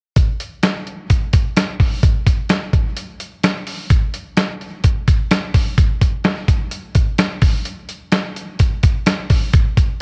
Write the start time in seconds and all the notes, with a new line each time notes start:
0.16 kick, closed hi-hat
0.40 closed hi-hat
0.62 snare, closed hi-hat
0.87 closed hi-hat
1.10 kick, closed hi-hat
1.33 kick, closed hi-hat
1.57 snare, closed hi-hat
1.80 kick, open hi-hat
2.03 kick, closed hi-hat
2.27 kick, closed hi-hat
2.49 snare, closed hi-hat
2.73 kick, closed hi-hat
2.97 closed hi-hat
3.20 closed hi-hat
3.44 snare, closed hi-hat
3.67 open hi-hat
3.90 kick, closed hi-hat
4.14 closed hi-hat
4.37 snare, closed hi-hat
4.61 closed hi-hat
4.84 kick, closed hi-hat
5.08 kick, closed hi-hat
5.31 snare, closed hi-hat
5.54 kick, open hi-hat
5.78 kick, closed hi-hat
6.01 kick, closed hi-hat
6.24 snare, closed hi-hat
6.48 kick, closed hi-hat
6.71 closed hi-hat
6.95 kick, closed hi-hat
7.18 snare, closed hi-hat
7.42 kick, open hi-hat
7.65 closed hi-hat
7.89 closed hi-hat
8.12 snare, closed hi-hat
8.36 closed hi-hat
8.59 kick, closed hi-hat
8.83 kick, closed hi-hat
9.06 snare, closed hi-hat
9.30 kick, open hi-hat
9.53 kick, closed hi-hat
9.77 kick, closed hi-hat